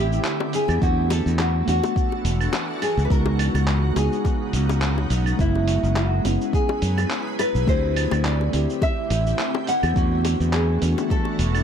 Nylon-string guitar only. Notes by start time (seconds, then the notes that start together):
Already playing: G4
0.55 G#4
0.83 F#4
1.12 A4
1.40 F#4
1.69 F#4
2.83 G#4
3.05 B4
3.11 A#4
3.97 G#4
5.41 E4
5.97 F#4
6.54 G#4
7.40 B4
7.69 C5
8.26 D5
8.83 E5
9.69 F#5
9.97 F#4
10.54 G#4
11.11 A4